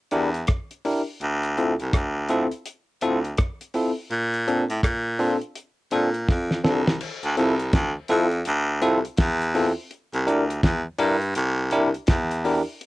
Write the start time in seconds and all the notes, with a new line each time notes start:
0.11 E2 D4 E4 G4 A#4, closed hi-hat
0.34 closed hi-hat
0.47 kick, cross-stick, closed hi-hat
0.71 closed hi-hat
0.85 D4 E4 G4 A#4, open hi-hat
1.21 D2, closed hi-hat
1.43 closed hi-hat
1.58 C4 E4 F4 A4, closed hi-hat
1.80 C2, closed hi-hat
1.93 D2, kick, cross-stick, closed hi-hat
2.28 C4 E4 F4 A4, closed hi-hat
2.51 closed hi-hat
2.65 closed hi-hat
3.01 D2 C4 E4 F4 A4, closed hi-hat
3.24 closed hi-hat
3.37 kick, cross-stick, closed hi-hat
3.61 closed hi-hat
3.74 C4 E4 F4 A4, open hi-hat
4.11 A#2, closed hi-hat
4.34 closed hi-hat
4.47 C4 D4 F4 A4, closed hi-hat
4.70 A2, closed hi-hat
4.83 A#2, kick, cross-stick, closed hi-hat
5.19 C4 D4 F4 A4, open hi-hat
5.42 closed hi-hat
5.56 closed hi-hat
5.91 A#2 C4 D4 F4 A4, closed hi-hat
6.14 closed hi-hat
6.29 F2, kick, snare
6.51 snare
6.64 C2 C4 D4 F4 A4, snare
6.87 snare
7.00 crash
7.23 D2, closed hi-hat
7.37 C2 C4 E4 F4 A4, closed hi-hat
7.59 closed hi-hat
7.73 D2, kick, snare, closed hi-hat
8.08 F2 C4 E4 F4 A4, closed hi-hat
8.31 closed hi-hat
8.45 D2, closed hi-hat
8.81 C2 C4 E4 F4 A4, closed hi-hat
9.05 closed hi-hat
9.17 E2, kick, snare, closed hi-hat
9.41 closed hi-hat
9.55 C4 E4 F4 A4, open hi-hat
9.91 closed hi-hat
10.13 C2, closed hi-hat
10.27 D2 D4 E4 G4 A#4, closed hi-hat
10.50 closed hi-hat
10.63 E2, kick, snare, closed hi-hat
10.98 G2 D4 E4 G4 A#4, closed hi-hat
11.21 closed hi-hat
11.35 C2, closed hi-hat
11.71 C2 D4 E4 G4 A#4, closed hi-hat
11.94 closed hi-hat
12.07 E2, kick, snare, closed hi-hat
12.31 closed hi-hat
12.45 D4 E4 G4 A#4, open hi-hat
12.81 closed hi-hat